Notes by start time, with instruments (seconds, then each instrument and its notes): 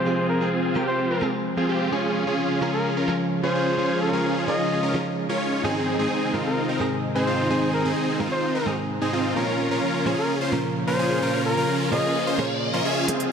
Already playing: analog synth pad C3 F3 G#3 F4, muted trumpet C5
0.05 clean electric guitar F3 G#3 C4 G#4, supersaw synth C4 F4 G#4
0.29 muted trumpet A#4
0.40 clean electric guitar F3 G#3 C4 G#4, supersaw synth C4 F4 G#4
0.75 clean electric guitar F3 G#3 C4 A#4, supersaw synth C4 F4 G4
0.88 muted trumpet C5
1.11 supersaw synth C4 F4 A#4
1.21 clean electric guitar F3 G#3 C4 G#4
1.57 clean electric guitar F3 G#3 C4 G#4, supersaw synth C4 F4 G#4
1.69 supersaw synth C4 F4 G4
1.91 analog synth pad C#3 F3 F4, clean electric guitar F3 G#3 C#4 G#4, supersaw synth C#4 F4 G#4
2.26 clean electric guitar F3 G#3 C#4 G#4, supersaw synth C#4 F4 G#4
2.61 clean electric guitar F3 G#3 C#4 A#4, supersaw synth C#4 F4 G#4
2.74 muted trumpet A#4
2.97 supersaw synth C#4 F4 A#4
3.08 clean electric guitar F3 G#3 C#4 G#4
3.43 clean electric guitar F3 G#3 C#4 G#4, supersaw synth C#4 F4 G#4, muted trumpet C5
3.55 supersaw synth C#4 F4 G#4
3.77 clean electric guitar F3 G#3 C#4 G#4, supersaw synth C#4 F4 G#4, analog synth pad D#4
4.02 muted trumpet A#4
4.13 clean electric guitar F3 G#3 C#4 G#4, supersaw synth C#4 F4 G#4
4.47 clean electric guitar F3 G#3 C#4 A#4, supersaw synth C#4 F4 G#4, muted trumpet D#5
4.83 supersaw synth C#4 F4 A#4
4.94 clean electric guitar F3 G#3 C#4 F4
5.29 clean electric guitar F3 G#3 C#4 A#4, supersaw synth C#4 F4 C#5
5.63 clean electric guitar G#2 D#3 G#3 C4 G#4, analog synth pad C3 D#3, supersaw synth C4 D#4 G#4
5.98 clean electric guitar G#2 D#3 G#3 C4 G#4, supersaw synth C4 D#4 G#4
6.33 clean electric guitar G#2 D#3 G#3 C4 A#4, supersaw synth C4 D#4 F4
6.46 muted trumpet A#4
6.69 supersaw synth C4 D#4 A#4
6.80 clean electric guitar G#2 D#3 G#3 C4 G#4
7.15 clean electric guitar G#2 D#3 G#3 C4 G#4, supersaw synth C4 D#4 G#4, muted trumpet C5
7.27 supersaw synth C4 D#4 F4
7.50 clean electric guitar G#2 D#3 G#3 C4 G#4, supersaw synth C4 D#4 G#4
7.74 muted trumpet A#4
7.85 clean electric guitar G#2 D#3 G#3 C4 G#4, supersaw synth C4 D#4 G#4
8.20 clean electric guitar G#2 D#3 G#3 C4 A#4, supersaw synth C4 D#4 F4
8.32 muted trumpet C5
8.55 supersaw synth C4 D#4 A#4
8.66 clean electric guitar G#2 D#3 G#3 C4 G#4
9.01 clean electric guitar G#2 D#3 G#3 C4 G#4, supersaw synth C4 D#4 G#4
9.13 supersaw synth C4 D#4 F4
9.36 clean electric guitar A#2 F3 A#3 C#4 A#4, analog synth pad C#3 F3 A#3 F4, supersaw synth C#4 F4 A#4, riser
9.70 clean electric guitar A#2 F3 A#3 C#4 A#4, supersaw synth C#4 F4 A#4
10.05 clean electric guitar A#2 F3 A#3 C#4 C5, supersaw synth C#4 F4 G#4
10.18 muted trumpet A#4
10.41 supersaw synth C#4 F4 C5
10.52 clean electric guitar A#2 F3 A#3 C#4 A#4
10.87 clean electric guitar A#2 F3 A#3 C#4 A#4, supersaw synth C#4 F4 A#4, muted trumpet C5
10.99 supersaw synth C#4 F4 G#4
11.22 clean electric guitar A#2 F3 A#3 C#4 A#4, supersaw synth C#4 F4 A#4
11.46 muted trumpet A#4
11.56 clean electric guitar A#2 F3 A#3 C#4 A#4, supersaw synth C#4 F4 A#4
11.91 clean electric guitar A#2 F3 A#3 C#4 C5, supersaw synth C#4 F4 G#4, muted trumpet D#5
12.27 supersaw synth C#4 F4 C5
12.38 clean electric guitar A#2 F3 A#3 C#4 G#4
12.73 clean electric guitar A#2 F3 A#3 C#4 C5, supersaw synth C#4 F4 A#4
12.85 supersaw synth C#4 F4 G#4
13.08 detuned saw bass F1, analog synth pad C3 F3 G#3 F4, clean electric guitar F3 G#3 C4 G#4, supersaw synth C4 F4 G#4, closed hi-hat, riser
13.20 closed hi-hat